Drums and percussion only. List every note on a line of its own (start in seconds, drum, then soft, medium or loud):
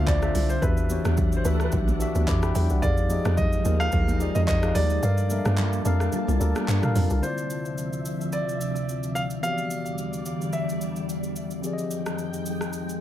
0.07 kick loud
0.07 clap loud
0.07 shaker medium
0.22 cross-stick medium
0.22 shaker medium
0.35 open hi-hat medium
0.35 low conga medium
0.35 shaker medium
0.50 shaker medium
0.62 kick loud
0.62 shaker medium
0.77 shaker medium
0.90 high conga medium
0.90 shaker loud
1.05 cross-stick loud
1.05 high conga medium
1.05 shaker medium
1.17 kick loud
1.17 low conga medium
1.17 shaker medium
1.32 shaker medium
1.45 high conga medium
1.45 shaker loud
1.60 cross-stick medium
1.60 shaker soft
1.72 kick loud
1.72 low conga medium
1.72 shaker medium
1.88 high conga medium
1.88 shaker medium
2.00 shaker medium
2.15 high conga medium
2.15 shaker medium
2.28 kick loud
2.28 clap loud
2.28 shaker medium
2.43 cross-stick loud
2.43 shaker medium
2.55 open hi-hat medium
2.55 low conga medium
2.55 shaker medium
2.70 shaker medium
2.83 kick loud
2.83 shaker medium
2.97 shaker medium
3.10 high conga medium
3.10 shaker loud
3.25 cross-stick loud
3.25 high conga medium
3.25 shaker medium
3.37 kick loud
3.37 low conga medium
3.37 shaker medium
3.53 shaker medium
3.65 high conga medium
3.65 shaker loud
3.80 cross-stick medium
3.80 shaker soft
3.92 kick loud
3.92 low conga medium
3.92 shaker medium
4.08 high conga medium
4.08 shaker medium
4.20 shaker medium
4.35 high conga medium
4.35 shaker medium
4.48 kick loud
4.48 clap loud
4.48 shaker medium
4.63 cross-stick loud
4.63 shaker medium
4.75 open hi-hat medium
4.75 low conga medium
4.75 shaker medium
4.90 shaker medium
5.03 shaker medium
5.18 shaker medium
5.30 high conga medium
5.30 shaker loud
5.45 cross-stick loud
5.45 high conga medium
5.45 shaker medium
5.58 clap medium
5.58 low conga medium
5.58 shaker medium
5.73 shaker medium
5.85 high conga medium
5.85 shaker loud
6.00 cross-stick medium
6.00 shaker medium
6.12 low conga medium
6.12 shaker medium
6.28 high conga medium
6.28 shaker medium
6.41 shaker medium
6.55 cross-stick loud
6.55 high conga medium
6.55 shaker medium
6.68 clap loud
6.68 shaker medium
6.83 cross-stick medium
6.83 mid tom loud
6.83 shaker medium
6.96 open hi-hat medium
6.96 low conga medium
6.96 shaker medium
7.10 shaker medium
7.23 shaker medium
7.38 shaker medium
7.50 shaker medium
7.65 shaker soft
7.78 shaker medium
7.93 shaker medium
8.05 shaker loud
8.21 shaker soft
8.32 shaker medium
8.49 shaker medium
8.61 shaker medium
8.76 shaker soft
8.89 shaker medium
9.03 shaker medium
9.16 shaker medium
9.30 shaker medium
9.43 shaker medium
9.58 shaker medium
9.71 shaker medium
9.86 shaker soft
9.98 shaker medium
10.13 shaker medium
10.26 shaker medium
10.41 shaker soft
10.53 shaker medium
10.69 shaker soft
10.81 shaker medium
10.96 shaker soft
11.09 shaker medium
11.23 shaker medium
11.36 shaker medium
11.51 shaker soft
11.64 shaker medium
11.78 shaker medium
11.91 shaker loud
12.06 cross-stick medium
12.06 shaker soft
12.18 shaker medium
12.34 shaker medium
12.46 shaker medium
12.61 cross-stick medium
12.61 shaker soft
12.73 shaker medium
12.89 shaker medium